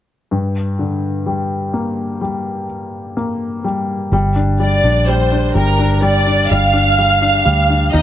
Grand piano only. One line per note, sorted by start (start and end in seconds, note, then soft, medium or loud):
0.31 4.09 G2 soft
0.79 2.66 D3 soft
1.26 2.20 G3 soft
1.74 3.15 A#3 soft
2.21 3.63 G3 soft
3.17 4.10 A#3 soft
3.64 4.11 G3 soft
4.13 4.58 G3 medium
4.36 4.83 D4 soft
4.60 5.06 G3 soft
4.84 5.30 D4 soft
5.08 5.53 G3 soft
5.32 5.77 D4 soft
5.55 6.00 G3 medium
5.79 6.25 D4 soft
6.02 6.49 G3 medium
6.26 6.72 D4 soft
6.51 6.97 G3 soft
6.73 7.20 D4 soft
6.98 7.44 G3 medium
7.22 7.68 D4 soft
7.45 7.92 G3 soft
7.70 7.93 D4 soft
7.93 8.02 D#4 medium